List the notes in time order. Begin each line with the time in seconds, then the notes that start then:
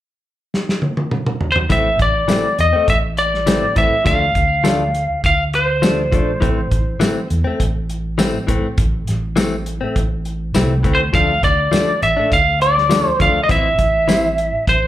0.54 snare
0.69 snare
0.82 high tom
0.97 high tom
1.11 mid tom
1.26 mid tom
1.41 floor tom
1.52 C5, floor tom
1.70 A1 E3 A3 C4 E5, kick, closed hi-hat
1.99 A1 D5, kick, closed hi-hat
2.28 E3 A3 C4, snare, closed hi-hat, tambourine
2.59 E2 D#5, closed hi-hat
2.73 A3 C4, muted fingered electric bass stroke
2.88 A1 E5, kick, closed hi-hat
3.17 D5, closed hi-hat
3.34 snare
3.47 E3 A3 C4, snare, closed hi-hat, tambourine
3.76 A1 E3 A3 C4 E5, kick, closed hi-hat
3.92 muted fingered electric bass stroke
4.05 D2 F3 A3 D4 F5, kick, closed hi-hat
4.35 D2, kick, closed hi-hat
4.64 F3 A3 D4, snare, closed hi-hat, tambourine
4.94 closed hi-hat
5.24 D2 F5, kick, closed hi-hat
5.53 C5, closed hi-hat
5.82 F3 A3 D4, snare, closed hi-hat, tambourine
6.12 A#1 F3 A3 D4, kick, closed hi-hat
6.41 A1 E3 A3 C4, kick, closed hi-hat
6.71 A1, kick, closed hi-hat
7.00 E3 A3 C4, snare, closed hi-hat, tambourine
7.30 E2, closed hi-hat
7.44 A3 C4, muted fingered electric bass stroke
7.60 A1, kick, closed hi-hat
7.89 closed hi-hat
8.18 E3 A3 C4, snare, closed hi-hat, tambourine
8.47 A1 E3 A3 C4, kick, closed hi-hat
8.78 A1, kick, closed hi-hat
9.07 A1, snare, closed hi-hat
9.36 E3 A3 C4, snare, closed hi-hat, tambourine
9.66 closed hi-hat
9.81 A3 C4
9.96 A1, kick, closed hi-hat
10.25 closed hi-hat
10.54 C2 E3 A3 C4, snare, closed hi-hat, tambourine
10.83 E3 A3 C4, kick, closed hi-hat
10.95 C5
11.13 D2 F3 A3 D4 F5, kick, closed hi-hat
11.43 D2 D5, kick, closed hi-hat
11.72 F3 A3 D4, snare, closed hi-hat, tambourine
12.02 A1 E5, closed hi-hat
12.17 A3 D4
12.32 D2 F5, kick, closed hi-hat
12.61 D5, closed hi-hat
12.78 snare
12.89 F3 A3 D4, snare, closed hi-hat, tambourine
13.09 C5
13.19 D2 F3 A3 D4 F5, kick, closed hi-hat
13.43 D#5
13.49 A1 E3 C4 E4 E5, kick, closed hi-hat
13.78 A1, kick, closed hi-hat
14.08 E3 C4 E4, snare, closed hi-hat, tambourine
14.38 closed hi-hat
14.67 A1 C5, kick, closed hi-hat